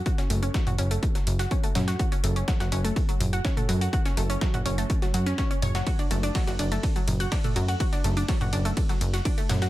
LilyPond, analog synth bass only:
\new Staff \with { instrumentName = "Analog synth bass" } { \clef bass \time 4/4 \key fis \minor \tempo 4 = 124 r8 fis,,8 r16 fis,,16 fis,,8 r8 fis,,8 r8 fis,8 | r8 fis,,8 r16 fis,,16 fis,,8 r8 fis,,8 r8 fis,8 | r8 fis,,8 r16 fis,,16 fis,,8 r8 fis,8 r8 fis,,8 | r8 fis,,8 r16 fis,,16 fis,,8 r8 fis,,8 r8 fis,8 |
r8 fis,,8 r16 fis,,16 fis,,8 r8 fis,,8 r8 fis,8 | }